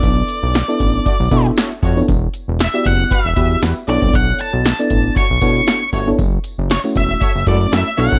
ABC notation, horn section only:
X:1
M:4/4
L:1/16
Q:"Swing 16ths" 1/4=117
K:Bm
V:1 name="Horn section"
z8 [A,Fd] z [A,Fd] z [A,Fc] z [A,Fc]2 | z8 [G,FB] z [G,FB] z [G,FB] z [A,Fd]2 | z8 [A,Fc] z [A,Fc] z [A,Fc] z [A,Fc]2 | z8 [A,Fc] z [F,EA] z [F,EA] z [A,Fc]2 |]